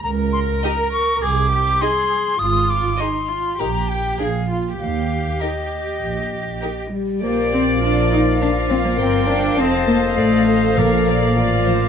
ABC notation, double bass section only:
X:1
M:4/4
L:1/8
Q:1/4=102
K:Eb
V:1 name="Double bass section" clef=bass
_D,,2 z2 C,,2 z2 | A,,,2 z2 B,,,2 B,,,2 | E,,2 z2 B,,,2 z2 | [K:Bb] B,,,6 G,,,2 |
F,,,2 A,,,2 B,,,2 A,,,2 |]